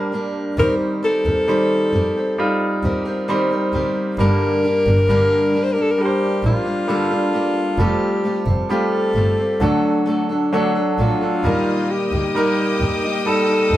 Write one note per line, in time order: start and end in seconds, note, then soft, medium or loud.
0.00 0.11 G3 soft
0.00 0.58 G3 medium
0.00 0.12 A#3 soft
0.00 0.13 D4 soft
0.00 0.60 D4 medium
0.00 0.12 G4 soft
0.00 0.54 A#4 medium
0.00 0.59 C5 medium
0.12 0.57 G3 medium
0.12 0.58 A#3 medium
0.12 0.58 D4 medium
0.12 0.57 G4 medium
0.57 0.66 D#2 medium
0.57 1.03 D#3 medium
0.57 1.90 D#3 soft
0.57 1.44 G3 medium
0.57 1.01 G3 medium
0.57 1.03 C4 medium
0.57 1.44 D#4 medium
0.57 1.04 G4 medium
0.57 0.75 A#4 medium
0.57 1.04 A#4 medium
0.57 1.45 C5 medium
1.03 1.26 G3 medium
1.03 1.26 C4 soft
1.03 1.26 G4 medium
1.03 2.80 A4 medium
1.03 1.24 A#4 medium
1.25 1.34 D#2 medium
1.25 1.48 C4 soft
1.25 1.48 G4 soft
1.25 1.48 A#4 soft
1.48 1.94 D#3 medium
1.48 2.34 G3 medium
1.48 1.91 G3 medium
1.48 1.93 C4 medium
1.48 2.34 D#4 soft
1.48 1.93 G4 medium
1.48 2.34 C5 medium
1.93 2.01 F2 medium
1.93 2.16 G3 soft
1.93 2.16 C4 soft
1.93 2.16 G4 medium
1.93 2.17 A#4 medium
2.17 2.83 C4 soft
2.17 2.84 G4 soft
2.38 3.24 G3 medium
2.38 3.24 D#4 medium
2.38 3.25 F4 medium
2.83 2.91 D#2 medium
2.83 3.06 G3 medium
2.83 3.06 C4 medium
2.83 3.06 G4 medium
2.83 3.04 A#4 medium
3.05 3.28 C4 soft
3.05 3.28 G4 soft
3.05 3.28 A#4 medium
3.28 3.51 D#3 medium
3.28 3.51 G3 medium
3.28 4.14 G3 medium
3.28 3.51 C4 medium
3.28 4.15 D#4 medium
3.28 3.51 G4 medium
3.28 3.49 A#4 medium
3.28 4.15 C5 medium
3.51 3.73 C4 soft
3.51 3.74 G4 soft
3.51 3.74 A#4 soft
3.73 3.81 D2 medium
3.73 4.18 G3 medium
3.73 4.19 C4 medium
3.73 4.19 G4 medium
3.73 4.20 A#4 medium
4.18 4.26 G1 medium
4.18 4.64 G2 medium
4.18 5.50 G2 soft
4.18 4.64 D3 medium
4.18 5.04 G3 medium
4.18 4.61 G3 medium
4.18 4.63 A#3 medium
4.18 5.04 D4 medium
4.18 4.63 D4 medium
4.18 4.65 G4 medium
4.18 5.05 A#4 medium
4.18 5.65 A#4 medium
4.63 4.86 G3 soft
4.63 4.86 A#3 medium
4.63 4.85 D4 medium
4.63 4.84 G4 medium
4.85 4.95 G1 medium
4.85 5.08 G3 soft
4.85 5.09 A#3 soft
4.85 5.09 D4 soft
4.85 5.08 G4 soft
5.08 5.16 G1 medium
5.08 5.54 G2 medium
5.08 5.54 D3 medium
5.08 5.94 G3 medium
5.08 5.52 G3 medium
5.08 5.53 A#3 medium
5.08 5.94 D4 medium
5.08 5.54 D4 medium
5.08 5.55 G4 medium
5.08 5.95 A#4 medium
5.53 5.76 G3 soft
5.53 5.76 A#3 soft
5.53 5.75 D4 medium
5.53 5.74 G4 medium
5.63 5.74 C5 medium
5.72 6.43 G4 soft
5.72 5.83 A#4 medium
5.77 6.41 G3 soft
5.77 6.42 A#3 soft
5.77 6.43 D4 soft
5.82 5.92 A4 medium
5.91 6.03 A#4 medium
5.98 6.84 G3 medium
5.98 6.84 D4 medium
5.98 6.45 G4 medium
5.98 6.05 A#4 medium
6.05 6.87 C5 medium
6.43 6.51 A#1 medium
6.43 6.66 G3 medium
6.43 6.66 A#3 medium
6.43 6.65 D4 soft
6.43 7.83 F4 medium
6.43 6.64 G4 medium
6.65 6.88 G3 soft
6.65 6.88 A#3 soft
6.65 6.89 D4 soft
6.65 6.88 G4 soft
6.88 7.11 G2 medium
6.88 7.11 D3 medium
6.88 7.74 G3 medium
6.88 7.11 G3 medium
6.88 7.11 A#3 medium
6.88 7.74 D4 medium
6.88 7.10 D4 medium
6.88 7.09 G4 medium
6.88 7.74 A4 medium
7.10 7.32 G3 soft
7.10 7.33 A#3 soft
7.10 7.34 D4 soft
7.10 7.33 G4 soft
7.33 7.79 G3 soft
7.33 7.79 A#3 medium
7.33 7.80 D4 soft
7.33 7.79 G4 medium
7.78 7.86 F1 medium
7.78 8.24 F3 medium
7.78 8.65 G3 medium
7.78 8.22 A3 medium
7.78 8.23 C4 medium
7.78 8.65 F4 medium
7.78 8.25 F4 medium
7.78 8.25 G4 medium
7.78 8.44 G4 medium
7.78 8.65 A4 medium
8.24 8.47 A3 soft
8.24 8.47 C4 medium
8.24 8.47 F4 medium
8.24 8.45 G4 medium
8.46 8.55 F1 medium
8.46 8.69 C4 soft
8.46 8.70 F4 soft
8.46 8.69 G4 soft
8.69 9.15 F3 medium
8.69 9.56 G3 medium
8.69 9.14 A3 medium
8.69 9.15 C4 medium
8.69 9.56 F4 medium
8.69 9.16 F4 medium
8.69 9.56 G4 medium
8.69 9.16 G4 medium
8.69 10.03 A4 medium
9.15 9.23 G1 medium
9.15 9.38 A3 soft
9.15 9.38 C4 soft
9.15 9.38 F4 medium
9.15 9.36 G4 soft
9.38 9.61 C4 soft
9.38 9.61 F4 soft
9.38 9.61 G4 soft
9.60 9.69 D2 medium
9.60 10.06 D3 medium
9.60 10.95 D3 medium
9.60 10.48 F#3 medium
9.60 10.04 A3 medium
9.60 10.48 D4 medium
9.60 10.06 D4 medium
9.60 10.07 F#4 medium
9.60 10.48 A4 medium
9.60 10.07 A4 medium
10.06 10.29 A3 medium
10.06 10.30 D4 medium
10.06 10.30 F#4 medium
10.06 10.28 A4 medium
10.29 10.53 D4 soft
10.29 10.53 F#4 soft
10.29 10.52 A4 soft
10.53 10.76 D3 medium
10.53 11.40 F#3 medium
10.53 10.76 A3 medium
10.53 11.40 D4 medium
10.53 10.76 D4 medium
10.53 10.76 F#4 medium
10.53 11.40 A4 medium
10.53 10.74 A4 medium
10.75 10.98 D4 soft
10.75 10.99 F#4 soft
10.75 10.98 A4 soft
10.98 11.07 A#1 medium
10.98 11.21 A3 medium
10.98 11.22 D4 medium
10.98 11.92 F4 medium
10.98 11.22 F#4 medium
10.98 11.20 A4 medium
11.21 11.45 D4 soft
11.21 11.45 F#4 soft
11.21 11.44 A4 soft
11.44 11.52 D#2 medium
11.44 12.77 A#2 soft
11.44 12.12 D#3 medium
11.44 12.30 G3 medium
11.44 12.13 G3 medium
11.44 13.77 A#3 medium
11.44 12.13 A#3 medium
11.44 12.31 D#4 medium
11.44 12.12 D#4 medium
11.44 12.11 G4 medium
11.44 12.31 A#4 medium
11.44 13.77 D#5 medium
11.44 13.77 G5 medium
11.44 13.77 D#6 medium
11.91 13.29 G4 medium
12.12 12.20 D2 medium
12.12 12.35 A#3 soft
12.12 12.36 D#4 soft
12.12 12.35 G4 soft
12.34 13.21 G3 medium
12.34 12.79 G3 medium
12.34 12.80 A#3 medium
12.34 13.21 D#4 medium
12.34 12.82 D#4 medium
12.34 12.82 G4 medium
12.34 13.22 A#4 medium
12.80 12.88 D#2 medium
12.80 13.03 G3 soft
12.80 13.04 A#3 medium
12.80 13.03 D#4 soft
12.80 13.02 G4 medium
13.03 13.50 A#3 soft
13.03 13.48 D#4 soft
13.03 13.47 G4 soft
13.26 13.77 G3 medium
13.26 13.77 D#4 medium
13.26 13.77 A4 medium
13.48 13.71 A#3 soft
13.48 13.72 D#4 soft
13.48 13.71 G4 soft
13.71 13.77 D#2 medium
13.71 13.77 G3 soft
13.71 13.77 A#3 soft
13.71 13.77 D#4 medium